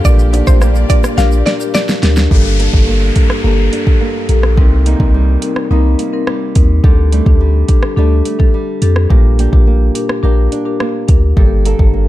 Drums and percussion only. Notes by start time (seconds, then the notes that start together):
0.05 kick, shaker
0.19 shaker
0.33 closed hi-hat, high timbale, shaker
0.47 kick, shaker
0.61 cross-stick, shaker
0.75 shaker
0.89 kick, closed hi-hat, shaker
1.04 cross-stick, shaker
1.18 snare, shaker
1.31 shaker
1.47 snare, closed hi-hat, shaker
1.60 shaker
1.74 snare, shaker
1.88 snare, shaker
2.03 snare, closed hi-hat, shaker
2.16 snare, shaker
2.31 kick
2.60 closed hi-hat
2.73 kick
3.16 kick, closed hi-hat
3.30 cross-stick
3.73 closed hi-hat
3.87 kick
4.29 closed hi-hat
4.43 cross-stick
4.57 kick
4.86 closed hi-hat
5.00 kick
5.42 closed hi-hat
5.56 cross-stick
5.99 closed hi-hat
6.27 cross-stick
6.55 kick, closed hi-hat
6.84 kick
7.12 closed hi-hat
7.26 kick
7.68 kick, closed hi-hat
7.83 cross-stick
8.25 closed hi-hat
8.40 kick
8.82 closed hi-hat
8.96 cross-stick
9.10 kick
9.39 closed hi-hat
9.53 kick
9.95 closed hi-hat
10.09 cross-stick
10.52 closed hi-hat
10.80 cross-stick
11.08 kick, closed hi-hat
11.37 kick
11.65 closed hi-hat
11.79 kick